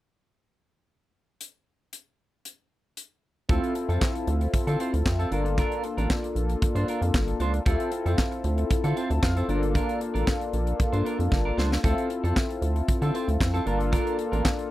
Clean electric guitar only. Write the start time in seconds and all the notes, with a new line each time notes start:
3.49 C4 F4 A4
3.75 muted clean electric guitar stroke
3.89 C4 F4 A4
4.15 muted clean electric guitar stroke
4.41 muted clean electric guitar stroke
4.53 muted clean electric guitar stroke
4.67 C4 F4 A4
4.80 C4 F4 C5
4.93 muted clean electric guitar stroke
5.05 muted clean electric guitar stroke
5.19 C4 F4 A4
5.31 D4 F4 A#4
5.45 muted clean electric guitar stroke
5.58 D4 F4 A#4
5.84 muted clean electric guitar stroke
5.98 D4 F4 A#4
6.09 muted clean electric guitar stroke
6.23 muted clean electric guitar stroke
6.49 muted clean electric guitar stroke
6.62 muted clean electric guitar stroke
6.75 D4 F4 C5
6.88 D4 F4 A#4
7.02 muted clean electric guitar stroke
7.28 muted clean electric guitar stroke
7.40 D4 F4 C5
7.54 muted clean electric guitar stroke
7.66 C4 F4 A4
7.92 muted clean electric guitar stroke
8.06 C4 F4 A4
8.18 muted clean electric guitar stroke
8.32 muted clean electric guitar stroke
8.58 muted clean electric guitar stroke
8.70 muted clean electric guitar stroke
8.84 C4 F4 A4
8.96 C4 F4 C5
9.10 muted clean electric guitar stroke
9.23 muted clean electric guitar stroke
9.37 C4 F4 A4
9.49 D4 F4 A#4
9.62 muted clean electric guitar stroke
9.74 D4 F4 A#4
10.01 muted clean electric guitar stroke
10.14 D4 F4 A#4
10.26 muted clean electric guitar stroke
10.40 muted clean electric guitar stroke
10.67 muted clean electric guitar stroke
10.79 muted clean electric guitar stroke
10.93 D4 F4 C5
11.05 D4 F4 A#4
11.19 muted clean electric guitar stroke
11.31 muted clean electric guitar stroke
11.45 D4 F4 A#4
11.57 D4 F4 C5
11.71 muted clean electric guitar stroke
11.83 C4 F4 A4
12.10 muted clean electric guitar stroke
12.24 C4 F4 A4
12.50 muted clean electric guitar stroke
12.76 muted clean electric guitar stroke
12.88 muted clean electric guitar stroke
13.02 C4 F4 A4
13.14 C4 F4 C5
13.28 muted clean electric guitar stroke
13.40 muted clean electric guitar stroke
13.54 C4 F4 A4
13.66 D4 F4 A#4
13.80 muted clean electric guitar stroke
13.92 D4 F4 A#4
14.18 muted clean electric guitar stroke
14.32 D4 F4 A#4
14.58 muted clean electric guitar stroke